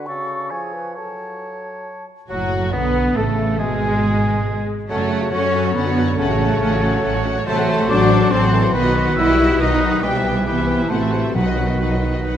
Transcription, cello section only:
2.30 2.70 F#3 medium
2.74 3.16 B3 medium
3.17 3.60 A3 medium
3.60 4.68 G#3 medium
4.89 5.29 A3 loud
5.32 5.74 C#4 medium
5.75 6.17 B3 loud
6.18 7.23 A3 medium
7.46 7.86 A3 loud
7.89 8.32 D4 loud
8.32 8.75 C4 loud
8.75 9.17 B3 loud
9.18 9.60 E4 loud
9.60 10.04 D#4 loud
10.03 10.47 G3 medium
10.46 10.90 B3 medium
10.91 11.35 A3 medium
11.35 12.37 F#3 medium

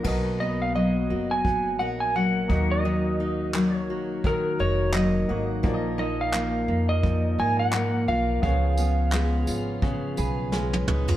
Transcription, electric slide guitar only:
0.40 0.62 D#5 medium
0.62 0.75 F5 medium
0.75 1.31 D#5 medium
1.31 1.79 G#5 loud
1.79 1.85 F#5 medium
2.00 2.15 G#5 medium
2.16 2.73 F#5 medium
2.72 3.77 D#5 medium
3.77 4.29 C#5 medium
4.27 4.62 A#4 medium
4.60 4.94 C#5 medium
4.94 5.46 D#5 medium
5.99 6.21 D#5 medium
6.21 6.89 F5 medium
6.89 7.40 D#5 loud
7.40 7.59 G#5 loud
7.59 8.05 F#5 medium
8.08 8.42 F5 medium
8.43 10.48 F5 medium

